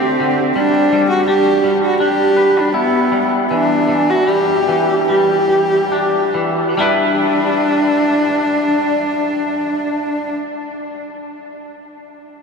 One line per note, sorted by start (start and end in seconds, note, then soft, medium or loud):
0.00 0.19 D3 soft
0.00 0.55 A3 soft
0.00 0.38 C4 soft
0.00 0.55 C4 soft
0.00 2.36 G4 soft
0.20 0.55 D3 soft
0.56 0.92 G3 soft
0.56 1.06 D4 soft
0.92 1.63 G3 soft
1.10 1.26 F#4 soft
1.27 2.00 D4 soft
1.27 1.78 G4 soft
1.64 3.11 G3 soft
1.84 2.00 F#4 soft
2.00 3.54 D4 soft
2.00 2.61 G4 medium
2.37 5.87 B4 soft
2.59 2.76 D4 soft
2.74 3.28 B3 soft
2.74 5.91 E4 soft
3.12 3.50 G3 soft
3.51 3.87 E3 soft
3.51 4.12 D4 soft
3.88 4.67 E3 soft
4.10 4.32 F#4 soft
4.27 5.08 G3 soft
4.27 5.10 G4 soft
4.68 6.33 E3 soft
5.09 6.76 G3 soft
5.09 6.33 G4 soft
5.92 6.78 D4 soft
6.34 6.77 E3 soft
6.77 10.34 G3 soft
6.77 10.36 D4 soft
6.77 10.33 D4 soft
6.77 10.37 E4 soft
6.82 10.38 B4 soft